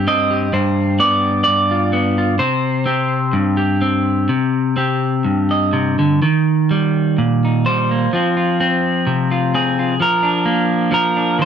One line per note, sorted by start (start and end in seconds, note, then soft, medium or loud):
0.00 0.52 G2 medium
0.00 0.30 G4 soft
0.00 0.52 C5 medium
0.08 0.48 C4 medium
0.08 0.53 D#5 medium
0.31 1.71 G4 soft
0.53 1.46 G2 medium
0.53 0.99 C5 medium
1.00 1.92 B3 medium
1.00 1.42 D5 medium
1.44 2.40 G2 medium
1.44 2.38 D5 medium
1.71 2.17 F4 soft
1.93 2.34 B3 medium
2.18 2.35 F4 soft
2.39 3.33 C3 medium
2.39 6.22 C5 medium
2.86 3.80 C4 medium
2.86 3.56 G4 soft
3.33 4.28 G2 medium
3.57 4.76 G4 soft
3.81 4.75 C4 medium
4.29 5.26 C3 medium
4.76 6.16 C4 medium
4.76 6.17 G4 soft
5.25 6.22 G2 medium
5.51 6.17 D#5 soft
5.73 5.98 C3 medium
5.99 6.22 D3 medium
6.22 8.07 D#3 medium
6.71 7.66 G3 medium
7.18 8.07 A#2 medium
7.45 8.08 D#4 soft
7.66 8.08 G3 medium
7.66 9.52 C5 loud
7.91 8.14 A#3 soft
8.13 9.98 F3 medium
8.13 8.59 C4 soft
8.13 8.36 F4 soft
8.37 9.29 F4 soft
8.60 9.53 C4 medium
9.07 9.98 C3 medium
9.31 9.76 F4 soft
9.54 9.94 C4 medium
9.54 9.99 G#4 medium
9.79 9.95 F4 soft
10.00 10.90 F3 medium
10.00 10.93 A#4 medium
10.23 11.15 D4 soft
10.46 11.45 A#3 medium
10.92 11.45 F3 medium
10.92 11.39 A#4 medium
11.16 11.45 D4 soft
11.39 11.45 D#3 medium
11.39 11.45 C5 medium